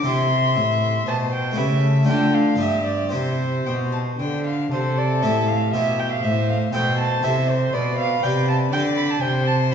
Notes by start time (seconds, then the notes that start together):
0.02 C4 E4 G4
0.06 C3 E5 C6
0.56 A2
1.06 B2 C5 A5
1.33 G5
1.51 A3 E4 G4
1.56 C#3 B4 E5
1.83 A4
2.03 A3 D4 F4
2.07 D3 G5
2.34 F5
2.55 B3 D4 G4
2.60 G2 G4 E5
2.87 D5
3.09 C4 E4 G4 E5
3.13 C3 C5
3.66 B2 G5
3.92 A5
4.20 D3 G5
4.47 F5
4.72 C3 A4 C5
4.98 D5
5.22 A2 C4 E4 G4 E5
5.47 F5
5.73 B2 C4 E4 G4 E5
5.99 G5
6.11 F5
6.23 A2 C5 E5
6.49 F5
6.72 B2 C4 E4 A4 C5 G5
6.99 A5
7.23 C3 C4 E4 A4 E5
7.50 C5
7.73 B2 B4 D5
7.99 F5
8.23 C3 G4 D5 G5
8.48 A5
8.72 D3 G4 D5 G5
8.96 B5
9.10 A5
9.22 C3 C5 G5
9.47 A5